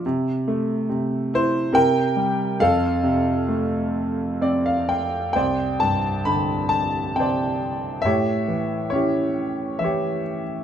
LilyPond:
<<
  \new Staff \with { instrumentName = "Grand piano" } { \time 3/4 \key f \major \tempo 4 = 68 << { r4. c''8 g''4 | f''2 d''16 f''16 g''8 | \key c \major g''8 a''8 b''8 a''8 g''4 | e''4 cis''4 e''8. r16 | } \\ { r4. e'8 bes'4 | a'2 r4 | <c'' d''>4. r8 <c'' d''>4 | <g' cis''>4 <e' g'>4 <g' cis''>4 | } >> }
  \new Staff \with { instrumentName = "Grand piano" } { \clef bass \time 3/4 \key f \major c8 a8 c4 c8 g8 | f,8 c8 a4 c'4 | \key c \major c,8 g,8 d4 c4 | a,8 e8 cis'4 e4 | }
>>